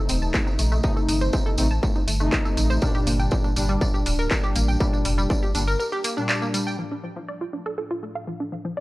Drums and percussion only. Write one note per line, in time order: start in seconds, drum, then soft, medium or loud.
0.09 open hi-hat loud
0.09 tambourine medium
0.22 tambourine soft
0.34 kick loud
0.34 clap loud
0.34 tambourine medium
0.47 tambourine soft
0.59 open hi-hat loud
0.59 tambourine medium
0.72 tambourine soft
0.83 kick loud
0.83 tambourine soft
0.97 tambourine soft
1.09 open hi-hat loud
1.09 tambourine medium
1.21 tambourine soft
1.33 kick loud
1.33 tambourine medium
1.46 tambourine soft
1.58 open hi-hat loud
1.58 tambourine medium
1.71 tambourine soft
1.83 kick loud
1.83 tambourine medium
1.96 tambourine soft
2.08 open hi-hat loud
2.08 tambourine medium
2.21 tambourine soft
2.33 kick loud
2.33 clap loud
2.33 tambourine soft
2.45 tambourine soft
2.57 open hi-hat loud
2.57 tambourine medium
2.70 tambourine soft
2.82 kick loud
2.82 tambourine soft
2.95 tambourine soft
3.07 open hi-hat loud
3.07 tambourine medium
3.20 tambourine soft
3.31 kick loud
3.31 tambourine soft
3.44 tambourine soft
3.56 open hi-hat medium
3.56 tambourine medium
3.69 tambourine soft
3.81 kick loud
3.81 tambourine medium
3.95 tambourine soft
4.06 open hi-hat loud
4.06 tambourine medium
4.19 tambourine soft
4.31 kick loud
4.31 clap loud
4.31 tambourine medium
4.43 tambourine soft
4.56 open hi-hat loud
4.56 tambourine medium
4.69 tambourine soft
4.80 kick loud
4.80 tambourine soft
4.94 tambourine soft
5.05 open hi-hat loud
5.05 tambourine medium
5.18 tambourine soft
5.30 kick loud
5.30 tambourine medium
5.43 tambourine soft
5.55 open hi-hat loud
5.55 tambourine medium
5.68 tambourine soft
5.80 tambourine soft
5.93 tambourine soft
6.04 open hi-hat loud
6.04 tambourine medium
6.18 tambourine soft
6.29 clap loud
6.29 tambourine soft
6.42 tambourine soft
6.54 open hi-hat loud
6.54 tambourine medium
6.68 tambourine soft